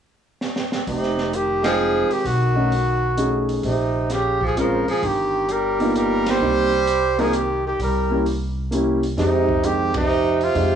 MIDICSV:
0, 0, Header, 1, 7, 480
1, 0, Start_track
1, 0, Key_signature, -4, "minor"
1, 0, Tempo, 461538
1, 898, Time_signature, 3, 2, 24, 8
1, 11184, End_track
2, 0, Start_track
2, 0, Title_t, "Trumpet"
2, 0, Program_c, 0, 56
2, 921, Note_on_c, 0, 63, 78
2, 1409, Note_on_c, 0, 67, 88
2, 1424, Note_off_c, 0, 63, 0
2, 1714, Note_off_c, 0, 67, 0
2, 1720, Note_on_c, 0, 68, 92
2, 2209, Note_on_c, 0, 67, 92
2, 2225, Note_off_c, 0, 68, 0
2, 2356, Note_on_c, 0, 66, 81
2, 2371, Note_off_c, 0, 67, 0
2, 3633, Note_off_c, 0, 66, 0
2, 3813, Note_on_c, 0, 63, 70
2, 4293, Note_on_c, 0, 67, 82
2, 4309, Note_off_c, 0, 63, 0
2, 4602, Note_off_c, 0, 67, 0
2, 4646, Note_on_c, 0, 68, 78
2, 4764, Note_off_c, 0, 68, 0
2, 4782, Note_on_c, 0, 70, 72
2, 5065, Note_off_c, 0, 70, 0
2, 5104, Note_on_c, 0, 68, 86
2, 5270, Note_on_c, 0, 67, 80
2, 5286, Note_off_c, 0, 68, 0
2, 5739, Note_on_c, 0, 70, 88
2, 5755, Note_off_c, 0, 67, 0
2, 6201, Note_off_c, 0, 70, 0
2, 6225, Note_on_c, 0, 70, 88
2, 6554, Note_on_c, 0, 72, 106
2, 6569, Note_off_c, 0, 70, 0
2, 7491, Note_on_c, 0, 68, 88
2, 7507, Note_off_c, 0, 72, 0
2, 7654, Note_on_c, 0, 67, 79
2, 7669, Note_off_c, 0, 68, 0
2, 7962, Note_off_c, 0, 67, 0
2, 7980, Note_on_c, 0, 67, 82
2, 8109, Note_off_c, 0, 67, 0
2, 8146, Note_on_c, 0, 70, 81
2, 8572, Note_off_c, 0, 70, 0
2, 9551, Note_on_c, 0, 63, 85
2, 10041, Note_on_c, 0, 67, 101
2, 10056, Note_off_c, 0, 63, 0
2, 10355, Note_off_c, 0, 67, 0
2, 10369, Note_on_c, 0, 63, 87
2, 10856, Note_on_c, 0, 65, 86
2, 10871, Note_off_c, 0, 63, 0
2, 11184, Note_off_c, 0, 65, 0
2, 11184, End_track
3, 0, Start_track
3, 0, Title_t, "Upright piano"
3, 0, Program_c, 1, 0
3, 1689, Note_on_c, 1, 56, 63
3, 1695, Note_on_c, 1, 60, 63
3, 1703, Note_on_c, 1, 79, 71
3, 1707, Note_on_c, 1, 63, 63
3, 2302, Note_off_c, 1, 56, 0
3, 2305, Note_off_c, 1, 60, 0
3, 2309, Note_off_c, 1, 79, 0
3, 2311, Note_off_c, 1, 63, 0
3, 2642, Note_on_c, 1, 57, 58
3, 2651, Note_on_c, 1, 61, 56
3, 2658, Note_on_c, 1, 63, 53
3, 2662, Note_on_c, 1, 66, 62
3, 2794, Note_off_c, 1, 57, 0
3, 2798, Note_off_c, 1, 61, 0
3, 2802, Note_off_c, 1, 63, 0
3, 2804, Note_off_c, 1, 66, 0
3, 3292, Note_on_c, 1, 57, 56
3, 3297, Note_on_c, 1, 61, 52
3, 3300, Note_on_c, 1, 63, 51
3, 3311, Note_on_c, 1, 68, 61
3, 3777, Note_off_c, 1, 57, 0
3, 3780, Note_off_c, 1, 61, 0
3, 3781, Note_off_c, 1, 63, 0
3, 3787, Note_off_c, 1, 68, 0
3, 4740, Note_on_c, 1, 56, 63
3, 4741, Note_on_c, 1, 60, 59
3, 4746, Note_on_c, 1, 61, 57
3, 4750, Note_on_c, 1, 65, 69
3, 5033, Note_off_c, 1, 56, 0
3, 5033, Note_off_c, 1, 60, 0
3, 5036, Note_off_c, 1, 61, 0
3, 5038, Note_off_c, 1, 65, 0
3, 6028, Note_on_c, 1, 58, 72
3, 6038, Note_on_c, 1, 59, 61
3, 6039, Note_on_c, 1, 63, 62
3, 6048, Note_on_c, 1, 65, 75
3, 6633, Note_off_c, 1, 58, 0
3, 6637, Note_off_c, 1, 59, 0
3, 6637, Note_off_c, 1, 63, 0
3, 6642, Note_off_c, 1, 65, 0
3, 6669, Note_on_c, 1, 58, 52
3, 6670, Note_on_c, 1, 60, 48
3, 6678, Note_on_c, 1, 63, 48
3, 6683, Note_on_c, 1, 67, 57
3, 6957, Note_off_c, 1, 58, 0
3, 6958, Note_off_c, 1, 60, 0
3, 6962, Note_off_c, 1, 63, 0
3, 6965, Note_off_c, 1, 67, 0
3, 7470, Note_on_c, 1, 58, 70
3, 7475, Note_on_c, 1, 60, 69
3, 7481, Note_on_c, 1, 63, 65
3, 7481, Note_on_c, 1, 70, 83
3, 7609, Note_off_c, 1, 58, 0
3, 7611, Note_off_c, 1, 60, 0
3, 7614, Note_off_c, 1, 63, 0
3, 7614, Note_off_c, 1, 70, 0
3, 8428, Note_on_c, 1, 58, 53
3, 8430, Note_on_c, 1, 61, 50
3, 8439, Note_on_c, 1, 67, 62
3, 8440, Note_on_c, 1, 64, 47
3, 8568, Note_off_c, 1, 58, 0
3, 8569, Note_off_c, 1, 61, 0
3, 8573, Note_off_c, 1, 64, 0
3, 8573, Note_off_c, 1, 67, 0
3, 9058, Note_on_c, 1, 58, 62
3, 9073, Note_on_c, 1, 61, 58
3, 9073, Note_on_c, 1, 64, 59
3, 9078, Note_on_c, 1, 67, 65
3, 9351, Note_off_c, 1, 58, 0
3, 9359, Note_off_c, 1, 61, 0
3, 9359, Note_off_c, 1, 64, 0
3, 9362, Note_off_c, 1, 67, 0
3, 9534, Note_on_c, 1, 56, 59
3, 9541, Note_on_c, 1, 60, 53
3, 9545, Note_on_c, 1, 63, 57
3, 9546, Note_on_c, 1, 67, 66
3, 9829, Note_off_c, 1, 56, 0
3, 9833, Note_off_c, 1, 60, 0
3, 9835, Note_off_c, 1, 63, 0
3, 9835, Note_off_c, 1, 67, 0
3, 10014, Note_on_c, 1, 56, 59
3, 10024, Note_on_c, 1, 60, 51
3, 10028, Note_on_c, 1, 63, 52
3, 10034, Note_on_c, 1, 67, 70
3, 10309, Note_off_c, 1, 56, 0
3, 10314, Note_off_c, 1, 60, 0
3, 10316, Note_off_c, 1, 63, 0
3, 10319, Note_off_c, 1, 67, 0
3, 10968, Note_on_c, 1, 56, 60
3, 10975, Note_on_c, 1, 60, 52
3, 10978, Note_on_c, 1, 63, 55
3, 10982, Note_on_c, 1, 67, 64
3, 11184, Note_off_c, 1, 56, 0
3, 11184, Note_off_c, 1, 60, 0
3, 11184, Note_off_c, 1, 63, 0
3, 11184, Note_off_c, 1, 67, 0
3, 11184, End_track
4, 0, Start_track
4, 0, Title_t, "Tenor saxophone"
4, 0, Program_c, 2, 66
4, 907, Note_on_c, 2, 48, 71
4, 1390, Note_on_c, 2, 51, 78
4, 1406, Note_off_c, 2, 48, 0
4, 1702, Note_off_c, 2, 51, 0
4, 1708, Note_on_c, 2, 53, 88
4, 2191, Note_on_c, 2, 51, 74
4, 2206, Note_off_c, 2, 53, 0
4, 2354, Note_off_c, 2, 51, 0
4, 2354, Note_on_c, 2, 51, 72
4, 3632, Note_off_c, 2, 51, 0
4, 3782, Note_on_c, 2, 48, 64
4, 4276, Note_on_c, 2, 49, 71
4, 4291, Note_off_c, 2, 48, 0
4, 4593, Note_off_c, 2, 49, 0
4, 4602, Note_on_c, 2, 53, 70
4, 4740, Note_off_c, 2, 53, 0
4, 4751, Note_on_c, 2, 53, 76
4, 5049, Note_off_c, 2, 53, 0
4, 5076, Note_on_c, 2, 53, 75
4, 5232, Note_on_c, 2, 51, 69
4, 5247, Note_off_c, 2, 53, 0
4, 5710, Note_on_c, 2, 55, 83
4, 5725, Note_off_c, 2, 51, 0
4, 6182, Note_off_c, 2, 55, 0
4, 6189, Note_on_c, 2, 55, 77
4, 6515, Note_off_c, 2, 55, 0
4, 6515, Note_on_c, 2, 55, 93
4, 7478, Note_on_c, 2, 53, 77
4, 7493, Note_off_c, 2, 55, 0
4, 7626, Note_on_c, 2, 51, 75
4, 7641, Note_off_c, 2, 53, 0
4, 7948, Note_off_c, 2, 51, 0
4, 7968, Note_on_c, 2, 51, 70
4, 8103, Note_off_c, 2, 51, 0
4, 8123, Note_on_c, 2, 55, 65
4, 8560, Note_off_c, 2, 55, 0
4, 9551, Note_on_c, 2, 48, 74
4, 10040, Note_on_c, 2, 51, 85
4, 10056, Note_off_c, 2, 48, 0
4, 10355, Note_off_c, 2, 51, 0
4, 10363, Note_on_c, 2, 48, 79
4, 10841, Note_off_c, 2, 48, 0
4, 10841, Note_on_c, 2, 48, 73
4, 11184, Note_off_c, 2, 48, 0
4, 11184, End_track
5, 0, Start_track
5, 0, Title_t, "Upright bass"
5, 0, Program_c, 3, 32
5, 906, Note_on_c, 3, 29, 81
5, 2146, Note_off_c, 3, 29, 0
5, 2334, Note_on_c, 3, 35, 86
5, 3737, Note_off_c, 3, 35, 0
5, 3778, Note_on_c, 3, 34, 85
5, 5023, Note_off_c, 3, 34, 0
5, 5223, Note_on_c, 3, 31, 88
5, 6621, Note_off_c, 3, 31, 0
5, 6658, Note_on_c, 3, 36, 78
5, 8059, Note_off_c, 3, 36, 0
5, 8105, Note_on_c, 3, 36, 86
5, 9501, Note_off_c, 3, 36, 0
5, 9535, Note_on_c, 3, 41, 80
5, 10936, Note_off_c, 3, 41, 0
5, 10972, Note_on_c, 3, 41, 88
5, 11184, Note_off_c, 3, 41, 0
5, 11184, End_track
6, 0, Start_track
6, 0, Title_t, "Muted upright bass strokes"
6, 2179, Note_on_c, 9, 29, 33
6, 2283, Note_off_c, 9, 29, 0
6, 5070, Note_on_c, 9, 29, 33
6, 5174, Note_off_c, 9, 29, 0
6, 11184, End_track
7, 0, Start_track
7, 0, Title_t, "Drums"
7, 427, Note_on_c, 9, 38, 59
7, 531, Note_off_c, 9, 38, 0
7, 581, Note_on_c, 9, 38, 74
7, 685, Note_off_c, 9, 38, 0
7, 748, Note_on_c, 9, 38, 85
7, 852, Note_off_c, 9, 38, 0
7, 904, Note_on_c, 9, 36, 32
7, 907, Note_on_c, 9, 46, 42
7, 1008, Note_off_c, 9, 36, 0
7, 1011, Note_off_c, 9, 46, 0
7, 1069, Note_on_c, 9, 38, 31
7, 1173, Note_off_c, 9, 38, 0
7, 1226, Note_on_c, 9, 38, 41
7, 1330, Note_off_c, 9, 38, 0
7, 1387, Note_on_c, 9, 42, 50
7, 1491, Note_off_c, 9, 42, 0
7, 1708, Note_on_c, 9, 38, 68
7, 1708, Note_on_c, 9, 51, 63
7, 1812, Note_off_c, 9, 38, 0
7, 1812, Note_off_c, 9, 51, 0
7, 2192, Note_on_c, 9, 46, 35
7, 2296, Note_off_c, 9, 46, 0
7, 2341, Note_on_c, 9, 36, 32
7, 2346, Note_on_c, 9, 46, 43
7, 2445, Note_off_c, 9, 36, 0
7, 2450, Note_off_c, 9, 46, 0
7, 2828, Note_on_c, 9, 46, 40
7, 2932, Note_off_c, 9, 46, 0
7, 3303, Note_on_c, 9, 42, 50
7, 3407, Note_off_c, 9, 42, 0
7, 3628, Note_on_c, 9, 46, 39
7, 3732, Note_off_c, 9, 46, 0
7, 3779, Note_on_c, 9, 46, 43
7, 3780, Note_on_c, 9, 36, 33
7, 3883, Note_off_c, 9, 46, 0
7, 3884, Note_off_c, 9, 36, 0
7, 4261, Note_on_c, 9, 38, 36
7, 4261, Note_on_c, 9, 42, 46
7, 4365, Note_off_c, 9, 38, 0
7, 4365, Note_off_c, 9, 42, 0
7, 4588, Note_on_c, 9, 36, 49
7, 4692, Note_off_c, 9, 36, 0
7, 4753, Note_on_c, 9, 42, 45
7, 4857, Note_off_c, 9, 42, 0
7, 5077, Note_on_c, 9, 46, 35
7, 5181, Note_off_c, 9, 46, 0
7, 5228, Note_on_c, 9, 36, 31
7, 5230, Note_on_c, 9, 46, 44
7, 5332, Note_off_c, 9, 36, 0
7, 5334, Note_off_c, 9, 46, 0
7, 5706, Note_on_c, 9, 42, 50
7, 5810, Note_off_c, 9, 42, 0
7, 6033, Note_on_c, 9, 46, 37
7, 6137, Note_off_c, 9, 46, 0
7, 6193, Note_on_c, 9, 42, 48
7, 6297, Note_off_c, 9, 42, 0
7, 6514, Note_on_c, 9, 38, 75
7, 6514, Note_on_c, 9, 51, 65
7, 6618, Note_off_c, 9, 38, 0
7, 6618, Note_off_c, 9, 51, 0
7, 7148, Note_on_c, 9, 42, 49
7, 7252, Note_off_c, 9, 42, 0
7, 7474, Note_on_c, 9, 46, 35
7, 7578, Note_off_c, 9, 46, 0
7, 7625, Note_on_c, 9, 42, 49
7, 7729, Note_off_c, 9, 42, 0
7, 8107, Note_on_c, 9, 36, 31
7, 8109, Note_on_c, 9, 46, 46
7, 8211, Note_off_c, 9, 36, 0
7, 8213, Note_off_c, 9, 46, 0
7, 8592, Note_on_c, 9, 46, 41
7, 8696, Note_off_c, 9, 46, 0
7, 9070, Note_on_c, 9, 42, 50
7, 9174, Note_off_c, 9, 42, 0
7, 9393, Note_on_c, 9, 46, 39
7, 9497, Note_off_c, 9, 46, 0
7, 9542, Note_on_c, 9, 36, 33
7, 9546, Note_on_c, 9, 38, 39
7, 9546, Note_on_c, 9, 46, 41
7, 9646, Note_off_c, 9, 36, 0
7, 9650, Note_off_c, 9, 38, 0
7, 9650, Note_off_c, 9, 46, 0
7, 9865, Note_on_c, 9, 36, 57
7, 9969, Note_off_c, 9, 36, 0
7, 10021, Note_on_c, 9, 42, 50
7, 10125, Note_off_c, 9, 42, 0
7, 10340, Note_on_c, 9, 51, 70
7, 10343, Note_on_c, 9, 36, 80
7, 10444, Note_off_c, 9, 51, 0
7, 10447, Note_off_c, 9, 36, 0
7, 10824, Note_on_c, 9, 46, 36
7, 10928, Note_off_c, 9, 46, 0
7, 10975, Note_on_c, 9, 46, 43
7, 10977, Note_on_c, 9, 36, 34
7, 11079, Note_off_c, 9, 46, 0
7, 11081, Note_off_c, 9, 36, 0
7, 11184, End_track
0, 0, End_of_file